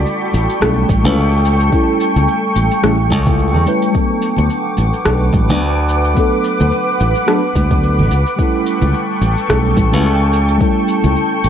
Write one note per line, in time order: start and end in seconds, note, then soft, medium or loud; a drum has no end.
0.00 0.57 G3 medium
0.00 0.58 A3 medium
0.00 0.59 C#4 medium
0.00 0.59 E4 medium
0.00 0.60 A4 medium
0.00 3.91 A4 medium
0.00 3.91 G5 medium
0.00 3.91 C#6 loud
0.06 shaker soft
0.33 0.46 A1 loud
0.33 high conga medium
0.33 shaker medium
0.50 shaker medium
0.60 0.84 B1 loud
0.60 1.00 G3 medium
0.60 1.01 A3 medium
0.60 1.01 C#4 medium
0.60 1.01 E4 medium
0.60 1.02 A4 medium
0.60 kick medium
0.60 cross-stick medium
0.60 shaker soft
0.89 1.05 A1 medium
0.89 kick loud
0.89 high conga medium
0.89 shaker medium
1.03 1.69 C#2 medium
1.03 1.14 G3 medium
1.03 1.14 A3 medium
1.03 1.14 C#4 medium
1.03 1.15 E4 medium
1.03 1.15 B4 medium
1.03 low conga medium
1.03 shaker medium
1.17 shaker soft
1.45 shaker medium
1.60 shaker soft
1.69 2.79 G3 medium
1.69 2.80 A3 medium
1.69 2.81 C#4 medium
1.69 kick loud
1.69 shaker soft
1.74 2.81 E4 medium
1.74 2.82 A4 loud
2.01 shaker medium
2.16 2.26 C#2 medium
2.16 low conga medium
2.16 shaker soft
2.28 shaker soft
2.56 2.68 A1 medium
2.56 high conga medium
2.56 shaker medium
2.71 shaker soft
2.82 3.12 A1 medium
2.82 2.96 G3 medium
2.82 2.96 A3 medium
2.82 2.96 C#4 medium
2.82 2.97 E4 medium
2.82 2.97 A4 loud
2.82 cross-stick medium
2.82 shaker soft
3.10 3.56 C#2 medium
3.10 kick medium
3.10 high conga loud
3.10 shaker medium
3.26 3.64 G3 medium
3.26 3.64 A3 medium
3.26 3.64 C#4 medium
3.26 3.65 E4 medium
3.26 3.65 A4 medium
3.26 kick loud
3.26 low conga medium
3.26 shaker soft
3.39 shaker soft
3.55 3.65 E2 loud
3.55 low conga medium
3.66 3.91 G3 medium
3.66 3.91 A3 medium
3.66 3.92 C#4 medium
3.66 3.92 E4 medium
3.66 3.92 B4 loud
3.66 shaker medium
3.82 shaker soft
3.92 5.01 F#3 medium
3.92 5.02 A3 medium
3.92 5.03 B3 medium
3.92 8.08 B4 medium
3.92 8.08 F#5 medium
3.92 8.08 D6 medium
3.92 kick loud
3.92 shaker soft
3.96 5.04 D4 medium
3.96 5.04 A4 medium
4.22 shaker medium
4.37 4.48 D2 medium
4.37 low conga medium
4.37 shaker soft
4.50 shaker soft
4.77 4.91 A1 medium
4.77 high conga medium
4.77 shaker medium
4.93 shaker soft
5.05 5.29 B1 medium
5.05 5.45 F#3 medium
5.05 5.45 A3 medium
5.05 5.45 B3 medium
5.05 5.46 D4 medium
5.05 5.46 A4 medium
5.05 kick medium
5.05 cross-stick medium
5.05 shaker soft
5.33 5.50 A1 loud
5.33 kick loud
5.33 high conga loud
5.33 shaker medium
5.47 6.13 D2 medium
5.47 5.58 F#3 medium
5.47 5.59 A3 medium
5.47 5.59 B3 medium
5.47 5.59 D4 medium
5.47 5.60 B4 medium
5.47 low conga medium
5.47 shaker soft
5.61 shaker soft
5.89 shaker medium
6.04 shaker soft
6.14 7.24 F#3 medium
6.14 7.24 A3 medium
6.14 7.25 B3 medium
6.14 kick loud
6.14 shaker soft
6.18 7.26 D4 medium
6.18 7.26 A4 loud
6.44 shaker medium
6.60 6.70 D2 loud
6.60 low conga medium
6.60 shaker soft
6.72 shaker soft
7.00 7.13 A1 medium
7.00 high conga medium
7.00 shaker medium
7.15 shaker soft
7.26 7.40 F#3 loud
7.26 7.40 A3 medium
7.26 7.40 B3 medium
7.26 7.41 D4 medium
7.26 7.41 A4 loud
7.26 cross-stick medium
7.26 shaker soft
7.55 8.00 D2 medium
7.55 kick medium
7.55 high conga medium
7.55 shaker medium
7.70 8.09 F#3 medium
7.70 8.09 A3 medium
7.70 8.10 B3 medium
7.70 8.10 D4 medium
7.70 8.10 A4 medium
7.70 kick medium
7.70 low conga medium
7.70 shaker soft
7.83 shaker soft
7.99 8.09 A1 medium
7.99 low conga medium
8.10 8.24 C#2 medium
8.10 11.49 A4 medium
8.10 11.49 G5 medium
8.10 11.49 C#6 medium
8.10 shaker medium
8.27 shaker soft
8.36 9.46 G3 medium
8.36 9.47 A3 medium
8.36 9.47 C#4 medium
8.36 kick loud
8.36 shaker soft
8.40 9.48 E4 medium
8.40 9.49 A4 medium
8.66 shaker medium
8.82 8.92 C#2 medium
8.82 low conga medium
8.82 shaker soft
8.94 shaker soft
9.21 9.34 A1 medium
9.21 high conga soft
9.21 shaker medium
9.37 shaker soft
9.49 9.73 B1 loud
9.49 9.89 G3 medium
9.49 9.89 A3 medium
9.49 9.90 C#4 medium
9.49 9.90 E4 medium
9.49 9.90 A4 medium
9.49 kick medium
9.49 cross-stick medium
9.49 shaker soft
9.77 9.93 A1 medium
9.77 kick loud
9.77 high conga medium
9.77 shaker medium
9.91 10.57 C#2 medium
9.91 10.02 G3 medium
9.91 10.03 A3 medium
9.91 10.03 C#4 medium
9.91 10.03 E4 medium
9.91 10.04 B4 medium
9.91 low conga medium
9.91 shaker soft
10.05 shaker soft
10.33 shaker medium
10.49 shaker soft
10.58 11.49 G3 loud
10.58 11.49 A3 medium
10.58 11.49 C#4 medium
10.58 11.49 E4 medium
10.58 kick loud
10.58 shaker soft
10.63 11.49 A4 loud
10.88 shaker medium
11.04 11.14 C#2 medium
11.04 low conga medium
11.04 shaker soft
11.16 shaker soft
11.44 11.49 A1 medium
11.44 high conga medium
11.44 shaker medium